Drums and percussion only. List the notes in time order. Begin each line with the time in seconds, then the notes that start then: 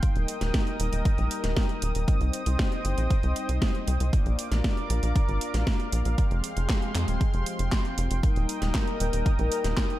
0.03 kick, closed hi-hat
0.16 closed hi-hat
0.28 closed hi-hat
0.41 snare, closed hi-hat
0.54 kick, snare, closed hi-hat
0.67 closed hi-hat
0.80 closed hi-hat
0.93 closed hi-hat
1.05 kick, closed hi-hat
1.18 closed hi-hat
1.31 closed hi-hat
1.44 snare, closed hi-hat
1.57 kick, snare, closed hi-hat
1.69 closed hi-hat
1.82 closed hi-hat
1.95 closed hi-hat
2.08 kick, closed hi-hat
2.21 closed hi-hat
2.33 closed hi-hat
2.46 closed hi-hat
2.59 kick, snare, closed hi-hat
2.72 closed hi-hat
2.85 closed hi-hat
2.98 closed hi-hat
3.10 kick, closed hi-hat
3.23 closed hi-hat
3.36 closed hi-hat
3.49 closed hi-hat
3.62 kick, snare, closed hi-hat
3.75 closed hi-hat
3.88 closed hi-hat
4.00 closed hi-hat
4.13 kick, closed hi-hat
4.26 closed hi-hat
4.39 closed hi-hat
4.52 snare, closed hi-hat
4.64 kick, snare, closed hi-hat
4.77 closed hi-hat
4.90 closed hi-hat
5.03 closed hi-hat
5.16 kick, closed hi-hat
5.29 closed hi-hat
5.41 closed hi-hat
5.54 snare, closed hi-hat
5.67 kick, snare, closed hi-hat
5.80 closed hi-hat
5.93 closed hi-hat
6.05 closed hi-hat
6.18 kick, closed hi-hat
6.31 closed hi-hat
6.44 closed hi-hat
6.57 closed hi-hat
6.69 kick, snare, clap, closed hi-hat
6.82 closed hi-hat
6.95 clap, closed hi-hat
7.08 closed hi-hat
7.21 kick, closed hi-hat
7.34 closed hi-hat
7.46 closed hi-hat
7.59 closed hi-hat
7.72 kick, snare, clap, closed hi-hat
7.85 closed hi-hat
7.98 closed hi-hat
8.11 closed hi-hat
8.23 kick, closed hi-hat
8.36 closed hi-hat
8.49 closed hi-hat
8.62 snare, closed hi-hat
8.75 kick, snare, clap, closed hi-hat
8.88 closed hi-hat
9.00 closed hi-hat
9.13 closed hi-hat
9.26 kick, closed hi-hat
9.39 closed hi-hat
9.52 closed hi-hat
9.64 snare, closed hi-hat
9.77 kick, snare, clap, closed hi-hat
9.90 closed hi-hat